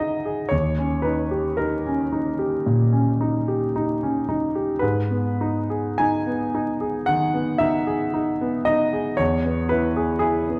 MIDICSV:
0, 0, Header, 1, 2, 480
1, 0, Start_track
1, 0, Tempo, 1077199
1, 233, Time_signature, 4, 2, 24, 8
1, 2152, Tempo, 1165049
1, 2632, Tempo, 1079137
1, 3112, Tempo, 1061947
1, 4072, Tempo, 1025641
1, 4727, End_track
2, 0, Start_track
2, 0, Title_t, "Grand piano"
2, 0, Program_c, 0, 0
2, 0, Control_c, 0, 64, 127
2, 0, Note_on_c, 0, 51, 29
2, 0, Note_on_c, 0, 56, 26
2, 0, Note_on_c, 0, 63, 33
2, 0, Note_on_c, 0, 68, 31
2, 0, Note_on_c, 0, 75, 51
2, 0, Note_on_c, 0, 76, 56
2, 0, Note_on_c, 0, 78, 56
2, 63, Note_off_c, 0, 68, 0
2, 113, Note_on_c, 0, 68, 30
2, 183, Note_off_c, 0, 63, 0
2, 216, Note_on_c, 0, 73, 55
2, 226, Note_off_c, 0, 75, 0
2, 227, Note_on_c, 0, 39, 37
2, 233, Note_off_c, 0, 68, 0
2, 241, Control_c, 0, 64, 0
2, 242, Note_off_c, 0, 51, 0
2, 242, Note_off_c, 0, 76, 0
2, 245, Note_off_c, 0, 78, 0
2, 246, Note_off_c, 0, 56, 0
2, 324, Control_c, 0, 64, 127
2, 350, Note_on_c, 0, 61, 29
2, 455, Note_on_c, 0, 71, 50
2, 465, Note_off_c, 0, 73, 0
2, 466, Note_on_c, 0, 63, 31
2, 543, Note_off_c, 0, 61, 0
2, 584, Note_on_c, 0, 67, 31
2, 660, Note_off_c, 0, 63, 0
2, 699, Note_on_c, 0, 70, 50
2, 702, Note_off_c, 0, 71, 0
2, 705, Note_on_c, 0, 63, 33
2, 778, Note_off_c, 0, 67, 0
2, 831, Note_on_c, 0, 61, 28
2, 898, Note_off_c, 0, 63, 0
2, 947, Note_on_c, 0, 63, 31
2, 1020, Note_off_c, 0, 61, 0
2, 1064, Note_on_c, 0, 67, 31
2, 1139, Note_off_c, 0, 63, 0
2, 1167, Note_off_c, 0, 39, 0
2, 1187, Note_on_c, 0, 46, 31
2, 1259, Note_off_c, 0, 67, 0
2, 1303, Note_on_c, 0, 61, 28
2, 1382, Note_off_c, 0, 46, 0
2, 1429, Note_on_c, 0, 63, 34
2, 1502, Note_off_c, 0, 61, 0
2, 1551, Note_on_c, 0, 67, 31
2, 1625, Note_off_c, 0, 63, 0
2, 1675, Note_on_c, 0, 63, 34
2, 1745, Note_off_c, 0, 67, 0
2, 1796, Note_on_c, 0, 61, 35
2, 1866, Note_off_c, 0, 63, 0
2, 1907, Note_off_c, 0, 70, 0
2, 1910, Note_on_c, 0, 63, 34
2, 1985, Note_off_c, 0, 61, 0
2, 2029, Note_on_c, 0, 67, 34
2, 2102, Note_off_c, 0, 63, 0
2, 2136, Note_on_c, 0, 71, 59
2, 2148, Note_on_c, 0, 44, 43
2, 2150, Note_off_c, 0, 67, 0
2, 2157, Control_c, 0, 64, 0
2, 2215, Control_c, 0, 64, 127
2, 2265, Note_on_c, 0, 59, 36
2, 2391, Note_on_c, 0, 63, 34
2, 2462, Note_off_c, 0, 59, 0
2, 2510, Note_on_c, 0, 68, 33
2, 2585, Note_off_c, 0, 63, 0
2, 2624, Note_off_c, 0, 71, 0
2, 2626, Note_on_c, 0, 80, 64
2, 2633, Note_on_c, 0, 63, 38
2, 2706, Note_off_c, 0, 68, 0
2, 2754, Note_on_c, 0, 59, 35
2, 2829, Note_off_c, 0, 63, 0
2, 2877, Note_on_c, 0, 63, 37
2, 2946, Note_off_c, 0, 59, 0
2, 2993, Note_on_c, 0, 68, 35
2, 3065, Note_off_c, 0, 63, 0
2, 3092, Note_off_c, 0, 44, 0
2, 3106, Note_on_c, 0, 78, 68
2, 3109, Note_off_c, 0, 80, 0
2, 3116, Note_on_c, 0, 51, 36
2, 3183, Note_off_c, 0, 68, 0
2, 3232, Note_on_c, 0, 59, 30
2, 3306, Note_off_c, 0, 51, 0
2, 3343, Note_on_c, 0, 76, 68
2, 3350, Note_off_c, 0, 78, 0
2, 3352, Note_on_c, 0, 63, 40
2, 3425, Note_off_c, 0, 59, 0
2, 3471, Note_on_c, 0, 68, 35
2, 3546, Note_off_c, 0, 63, 0
2, 3593, Note_on_c, 0, 63, 36
2, 3666, Note_off_c, 0, 68, 0
2, 3717, Note_on_c, 0, 59, 36
2, 3786, Note_off_c, 0, 63, 0
2, 3825, Note_on_c, 0, 75, 64
2, 3830, Note_off_c, 0, 76, 0
2, 3833, Note_on_c, 0, 63, 38
2, 3907, Note_off_c, 0, 59, 0
2, 3951, Note_on_c, 0, 68, 35
2, 4024, Note_off_c, 0, 63, 0
2, 4059, Note_on_c, 0, 73, 64
2, 4067, Note_off_c, 0, 75, 0
2, 4067, Note_on_c, 0, 40, 48
2, 4070, Note_off_c, 0, 68, 0
2, 4080, Control_c, 0, 64, 0
2, 4145, Control_c, 0, 64, 127
2, 4191, Note_on_c, 0, 59, 35
2, 4303, Note_on_c, 0, 71, 65
2, 4307, Note_off_c, 0, 73, 0
2, 4314, Note_on_c, 0, 64, 39
2, 4384, Note_off_c, 0, 59, 0
2, 4431, Note_on_c, 0, 68, 39
2, 4505, Note_off_c, 0, 64, 0
2, 4530, Note_off_c, 0, 68, 0
2, 4537, Note_on_c, 0, 68, 66
2, 4548, Note_off_c, 0, 71, 0
2, 4548, Note_on_c, 0, 64, 42
2, 4677, Note_on_c, 0, 59, 34
2, 4727, Note_off_c, 0, 40, 0
2, 4727, Note_off_c, 0, 59, 0
2, 4727, Note_off_c, 0, 64, 0
2, 4727, Note_off_c, 0, 68, 0
2, 4727, End_track
0, 0, End_of_file